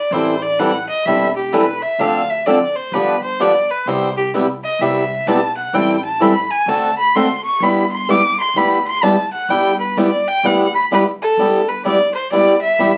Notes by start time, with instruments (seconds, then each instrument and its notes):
Already playing: erhu D5
0.11 upright bass A1, steel-string acoustic guitar E3 G3 C4 E4 A4, erhu C5
0.42 erhu D5
0.59 steel-string acoustic guitar E3 G3 C4 E4 A4, erhu F#5
0.89 erhu D#5
1.05 upright bass E1, steel-string acoustic guitar E3 G3 C4 E4 A4, erhu E5
1.37 erhu G4
1.52 steel-string acoustic guitar E3 G3 C4 E4 A4, erhu B4
1.82 erhu E5
1.98 upright bass D2, steel-string acoustic guitar D3 F3 C4 D4 A4, erhu F5
2.30 erhu E5
2.46 steel-string acoustic guitar D3 F3 C4 D4 A4, erhu D5
2.76 erhu C5
2.92 upright bass G1, steel-string acoustic guitar D3 F3 B3 D4 G4, erhu B4
3.24 erhu C5
3.40 steel-string acoustic guitar D3 F3 B3 D4 G4, erhu D5
3.71 erhu B4
3.86 upright bass C2, steel-string acoustic guitar C3 G3 B3 E4 G4, erhu C5
4.17 erhu G4
4.34 steel-string acoustic guitar C3 G3 B3 E4 G4
4.64 erhu D#5
4.79 upright bass C2, steel-string acoustic guitar C3 G3 B3 E4 G4, erhu E5
5.26 upright bass B1, steel-string acoustic guitar C3 G3 B3 E4 G4, erhu A5
5.57 erhu F#5
5.73 upright bass A1, steel-string acoustic guitar E3 G3 C4 E4 A4, erhu G5
6.05 erhu A5
6.20 steel-string acoustic guitar E3 G3 C4 E4 A4, erhu B5
6.51 erhu G#5
6.66 upright bass D2, steel-string acoustic guitar D3 A3 C4 F#4 A4, erhu A5
6.98 erhu B5
7.15 steel-string acoustic guitar D3 A3 C4 F#4 A4, erhu C6
7.45 erhu C#6
7.60 upright bass G1, steel-string acoustic guitar G3 B3 E4 G4, erhu B5
7.92 erhu C6
8.09 steel-string acoustic guitar G3 B3 E4 G4, erhu D6
8.40 erhu C6
8.54 upright bass D2, steel-string acoustic guitar G3 B3 E4 G4, erhu B5
8.88 erhu C6
9.03 steel-string acoustic guitar G3 B3 E4 G4, erhu A5
9.33 erhu F#5
9.49 upright bass G1, steel-string acoustic guitar G3 B3 E4 G4, erhu G5
9.80 erhu B4
9.97 steel-string acoustic guitar G3 B3 E4 G4, erhu D5
10.28 erhu G5
10.43 upright bass D2, steel-string acoustic guitar G3 B3 E4 G4, erhu F#5
10.75 erhu B5
10.92 steel-string acoustic guitar G3 B3 E4 G4, erhu B4
11.22 erhu A4
11.37 upright bass G1, steel-string acoustic guitar G3 B3 E4 G4
11.69 erhu B4
11.85 steel-string acoustic guitar G3 B3 E4 G4, erhu D5
12.15 erhu C5
12.31 upright bass G1, steel-string acoustic guitar G3 B3 E4 G4, erhu D5
12.62 erhu E5
12.79 upright bass A1, steel-string acoustic guitar G3 B3 E4 G4